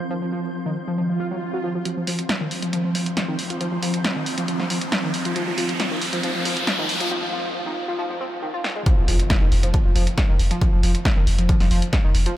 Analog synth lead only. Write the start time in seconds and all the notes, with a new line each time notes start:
0.10 F3
0.22 F3
0.32 F3
0.66 D#3
0.87 F3
0.98 F3
1.09 F3
1.20 F4
1.31 F#3
1.53 F#3
1.64 F3
1.75 F3
1.85 F3
1.97 F3
2.07 F3
2.41 D#3
2.62 F3
2.73 F3
2.84 F3
2.95 F3
3.28 D#3
3.50 F3
3.61 F3
3.72 F3
3.83 F3
4.16 D#3
4.38 F3
4.48 F3
4.60 F3
4.70 F3
5.03 D#3
5.25 F3
5.36 F3
5.47 F3
5.58 F3
5.91 D#3
6.13 F3
6.24 F3
6.35 F3
6.46 F3
6.79 D#3
7.01 F3
7.11 F3
7.22 F3
7.33 F3
7.66 D#3
7.88 F3
7.99 F3
8.10 F3
8.21 C4
8.42 D#3
8.54 F4
8.76 G#3
8.86 F3
8.98 F3
9.08 F3
9.41 D#3
9.63 F3
9.74 F3
9.85 F3
9.96 F3
10.29 D#3
10.51 F3
10.61 F3
10.73 F3
10.83 F3
11.17 D#3
11.39 F3
11.49 F3
11.60 F3
11.71 F3
12.04 D#3
12.26 F3